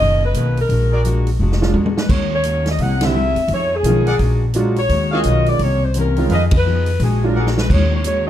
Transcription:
Already playing: D#5
0.00 F#1 B2 D#3 A#3 C#4, kick
0.26 B4
0.33 B1 B2 D#3 A#3 C#4, closed hi-hat
0.57 A#4, open hi-hat
0.69 A#1 A#2 G#3 D4 F#4, kick, open hi-hat
0.92 F#4 G#4 A#4 D5
1.04 A#2 G#3 D4 F#4, closed hi-hat
1.27 open hi-hat
1.39 F1 A#2 G#3 D4 F#4
1.52 snare
1.61 F#3 G#3 D4 F4, snare
1.73 E2 A#2 G#3 D4 F#4, high tom
1.86 high tom
1.97 B4, snare
2.09 D#2 D#3 A#3 C#4 F#4 C#5, kick, crash
2.35 C#5
2.43 D#3 A#3 C#4 F#4, closed hi-hat
2.66 snare, open hi-hat
2.71 D#5
2.78 C2 C3 A#3 E4 G#4 F#5, kick, open hi-hat
3.01 D3 G3 C4 E4, snare, ride
3.05 E5
3.15 C3 A#3 E4 G#4
3.36 E2, open hi-hat
3.48 F2 F3 B3 D#4 G#4, kick, open hi-hat
3.54 C#5
3.76 G#4
3.83 B1 D#3 F3 G#3 B3 C#4 D#4 F4, closed hi-hat
3.87 G#4
4.06 G#4 A#4 D5 F#5, open hi-hat
4.19 A#1 A#2 G#3 D4 F#4, kick, open hi-hat
4.54 A#2 F#3 G#3 D4 F4 F#4, closed hi-hat
4.76 C#5, open hi-hat
4.89 D#2 D#3 G#3 C#4 F#4, kick, open hi-hat
5.11 D#3 G#3 C#4 F4 F#4 G#4 C#5 D#5 F5
5.23 B1 D#3 G#3 C#4 F#4, closed hi-hat
5.46 D5, open hi-hat
5.59 C2 C3 E3 A#3 C#4 C#5, kick, open hi-hat
5.85 C5
5.94 C3 E3 A#3 C#4, closed hi-hat
6.00 A#4
6.16 D#3 G#3 C#4 F4, open hi-hat
6.29 F2 F3 B3 D#4 G#4 B4 D#5 F5, kick, open hi-hat
6.34 D#5
6.51 kick, ride
6.58 B4
6.66 F3 B3 D#4 G#4
6.86 open hi-hat
7.00 A#1 A#2 G#3 D4 F#4, kick, open hi-hat
7.04 G#4
7.24 F#3 G#3 D4 F4 A#4
7.35 A#2 G#3 D4 F#4 G#4 A#4 D5 F#5
7.47 snare
7.58 B4, snare
7.69 D#2 D#3 G#3 C#4 F#4 C#5, kick, crash
7.95 C#5
8.04 D#3 G#3 C#4 F#4 C#5, closed hi-hat

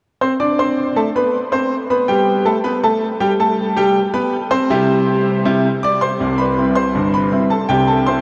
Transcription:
0.21 C4 C5 C6
0.40 D4 D5 D6
0.59 C4 C5 C6
0.96 A3 A4 A5
1.16 B3 B4 B5
1.52 C4 C5 C6
1.90 B3 B4 B5
2.08 G3 G4 G5
2.45 A3 A4 A5
2.64 B3 B4 B5
2.83 A3 A4 A5
3.20 G3 G4 G5
3.40 A3 A4 A5
3.76 G3 G4 G5
4.14 B3 B4 B5
4.51 C4 C5 C6
4.70 C3 G3 E4 G4
5.45 C3 G3 E4 G4
5.83 D5 D6
6.01 C5 C6
6.20 C2 C3
6.38 B4 B5
6.58 G3 C4 E4
6.75 C5 C6
6.95 G1 G2
7.14 B4 B5
7.31 G3 C4 E4
7.50 A4 A5
7.69 C2 C3 G4 G5
7.88 A4 A5
8.07 G3 C4 E4 C5 C6

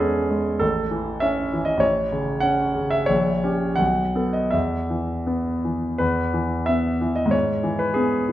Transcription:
Already playing: E2 G#3 G#4 A4 B4
0.00 C#4
0.30 G#3
0.59 A1 A4
0.91 E3
1.20 C#4 E5
1.53 E3
1.65 D#5
1.77 A1 C#5
2.12 C#3
2.40 C#4 F#5
2.75 C#3
2.90 E5
3.06 A#1 C#5
3.44 C#4 G4
3.76 B1 F#5
4.15 B3 A4
4.33 D#5
4.51 E2 E5
4.90 E3
5.27 B3
5.65 E3
5.98 E2 B4
6.34 E3
6.66 B3 E5
7.01 E3
7.16 D#5
7.26 G#2
7.31 C#5
7.63 E3
7.79 B4
7.94 B3 G#4
8.29 E3

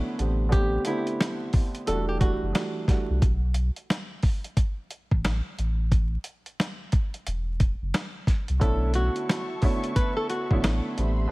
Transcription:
Already playing: D3 A3 B3 C#4 E4
0.18 A1 D3 A3 B3 C4 G4, closed hi-hat
0.49 D3 A3 B3 C4 G4, kick, closed hi-hat
0.85 D3 A3 B3 C4 E4 G4, closed hi-hat
1.07 closed hi-hat
1.21 snare, closed hi-hat
1.53 kick, open hi-hat
1.75 closed hi-hat
1.86 E1 E3 G3 A3 D4 F#4 A4, closed hi-hat
2.09 G4
2.19 E3 G3 A3 D4 F#4, kick, closed hi-hat
2.42 F#1
2.53 E3 G3 A3 D4 F#4, snare, closed hi-hat
2.88 E3 G3 A3 D4 F#4, kick, snare, closed hi-hat
3.10 C2
3.22 B1, kick, closed hi-hat
3.54 closed hi-hat
3.76 closed hi-hat
3.90 snare, closed hi-hat
4.23 kick, open hi-hat
4.44 closed hi-hat
4.57 kick, closed hi-hat
4.91 closed hi-hat
5.11 A1, kick
5.25 snare, closed hi-hat
5.58 A1, closed hi-hat
5.92 kick, closed hi-hat
6.24 closed hi-hat
6.46 closed hi-hat
6.60 snare, closed hi-hat
6.92 kick, closed hi-hat
7.14 closed hi-hat
7.27 E1, closed hi-hat
7.60 kick, closed hi-hat
7.82 F#1
7.94 snare, closed hi-hat
8.27 kick, snare, closed hi-hat
8.48 C2, closed hi-hat
8.60 B1 D3 A3 B3 C#4 E4 A4 E5 A5 C#6, kick, closed hi-hat
8.94 F#4, closed hi-hat
9.16 closed hi-hat
9.29 snare, closed hi-hat
9.61 D3 A3 B3 C#4 E4, kick, open hi-hat
9.84 closed hi-hat
9.96 B4, kick, closed hi-hat
10.17 A4
10.30 F#4, closed hi-hat
10.50 A1 D3 A3 B3 C#4 E4, kick
10.64 snare, closed hi-hat
10.96 A1 D3 G3 A3 B3 C4 G4 B5 C6, closed hi-hat
11.27 D3 A3

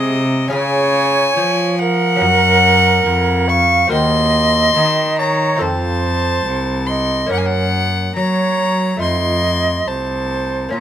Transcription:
Already playing: C3 G#3 C4 D#4 G#4 D#5
0.48 C#4 F4 G#4 G#5
0.52 C#3 C#5
1.37 F3
1.79 A#4 F#5
2.16 C#4 F#4 A#4
2.21 F#2
3.05 F2
3.48 F5 C#6
3.87 D#2 C4 F#4 A#4 D#5
3.91 D#2 C6
4.76 D#3
5.19 C#5 A#5
5.56 C4 F4 A4
5.60 F2 C5 A5
6.45 C2
6.86 D#5 C6
7.26 A#3 C#4 A#4
7.31 F#2 A#4 F#5
7.38 G#5
7.45 F#5
8.15 F#3 C#5 A#5
8.97 F2 A3 D#4 F4
9.01 F2 D#5 C6
9.87 C2 C5 A5
10.69 A#3 C#4 F4
10.74 A#2 C#5 A#5

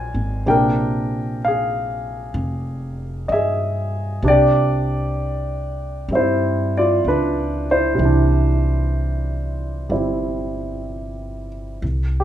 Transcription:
Already playing: A#1 D#3 G3 G#3 A#3 A#4 C5 G5 G#5
0.14 G#1
0.46 A#1 C3 A#3 D4 G#4 A#4 G5
1.45 G#4 F5
2.34 F1
3.28 G2 D#5 E5
3.33 G#4
4.22 C2 C3 D4
4.28 G4 D5
6.08 G2 G3 C4
6.13 E4 C5 E5
6.77 F4 D5
7.04 C#2 D4 B4
7.71 E4 C5
7.95 C3 E3
7.99 C2
8.05 D4
9.89 G1 G3 C4 E4
11.82 C2
12.20 G4

